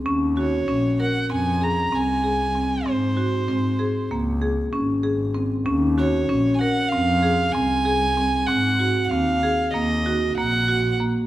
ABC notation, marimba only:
X:1
M:9/8
L:1/8
Q:3/8=64
K:Ebdor
V:1 name="Marimba"
D G D B C A C A C | C G C A B, A D A C | D G D B C A C A C | C G C A B, G B, G B, |]